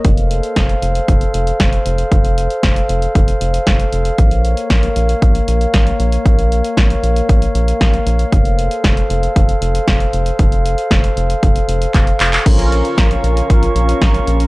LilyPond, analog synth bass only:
\new Staff \with { instrumentName = "Analog synth bass" } { \clef bass \time 4/4 \key bes \minor \tempo 4 = 116 f,,4 f,,8 f,,8 f,,8 f,,8 f,,8 f,,8 | f,,4 f,,8 f,,8 f,,8 f,,8 f,,8 f,,8 | bes,,4 bes,,8 bes,,8 bes,,8 bes,,8 bes,,8 bes,,8 | bes,,4 bes,,8 bes,,8 bes,,8 bes,,8 bes,,8 bes,,8 |
f,,4 f,,8 f,,8 f,,8 f,,8 f,,8 f,,8 | f,,4 f,,8 f,,8 f,,8 f,,8 f,,8 f,,8 | bes,,4 bes,,8 bes,,8 bes,,8 bes,,8 bes,,8 bes,,8 | }